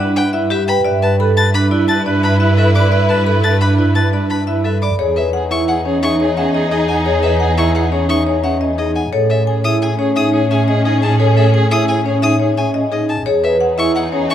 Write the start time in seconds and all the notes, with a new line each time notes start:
Already playing: G2 E4 B4
0.00 D4 B4 D5
0.16 B4 F#5 G5
0.33 E4 B4 E5
0.50 G4 B4 E5
0.68 B4 G5 B5
0.85 G2 E4 B4 D5 E5
1.02 B4 A5
1.20 A4 B4 B5
1.37 B4 A5 A6
1.54 D4 B4 B5
1.71 E4 B4 D5
1.88 B4 A5 A6
2.06 D4 B4 D5
2.23 B4 A5 B5
2.40 E4 B4 E5
2.57 A4 B4 E5
2.75 B4 D5 B5 D6
2.92 B4 D5 E5
3.09 B4 A5
3.27 A4 B4 B5
3.44 B4 A5 A6
3.61 D4 B4 B5
3.78 E4 B4 D5
3.95 B4 A5 A6
4.13 D4 B4 D5
4.30 B4 A5 B5
4.47 E4 B4 E5
4.64 A4 B4 E5
4.82 D5 B5 D6
4.99 E2 D#4 G#4 C#5
5.16 G#4 B4 E5
5.33 G#4 F#5
5.51 E4 G#4 E5 C#6
5.68 G#4 F#5
5.85 C#4 G#4 C#5
6.03 D#4 G#4 E5 C#6
6.20 G#4 C#5
6.37 C#4 G#4 E5 F#5
6.54 G#4 D#5
6.71 D#4 G#4 D#5
6.88 G#4 F#5 G#5
7.06 G#4 C#5
7.23 G#4 B4 E5
7.40 G#4 F#5
7.57 E4 G#4 E5 C#6
7.75 G#4 F#5
7.92 C#4 G#4 C#5
8.09 D#4 G#4 E5 C#6
8.26 G#4 C#5
8.43 C#4 G#4 E5 F#5
8.61 G#4 D#5
8.78 D#4 G#4 D#5
8.96 F#5 G#5
9.13 A2 C#4 G#4 A4 C#5
9.30 G#4 A4 C#5 E5
9.47 G#4 G#5
9.64 E4 G#4 E5 D#6
9.82 G#4 G#5
9.99 C#4 G#4 C#5
10.16 D#4 G#4 E5 D#6
10.34 G#4 C#5
10.51 C#4 G#4 E5 G#5
10.68 G#4 D#5
10.85 D#4 G#4 D#5
11.02 G#4 G#5 A5
11.20 G#4 A4 C#5
11.37 G#4 A4 C#5 E5
11.54 G#4 G#5
11.71 E4 G#4 E5 D#6
11.89 G#4 G#5
12.06 C#4 G#4 C#5
12.22 D#4 G#4 E5 D#6
12.40 G#4 C#5
12.57 C#4 G#4 E5 G#5
12.74 G#4 D#5
12.92 D#4 G#4 D#5
13.09 G#5 A5
13.26 E2 D#4 G#4 C#5
13.44 G#4 B4 E5
13.60 G#4 F#5
13.78 E4 G#4 E5 C#6
13.95 G#4 F#5
14.12 C#4 G#4 C#5
14.30 D#4 G#4 E5 C#6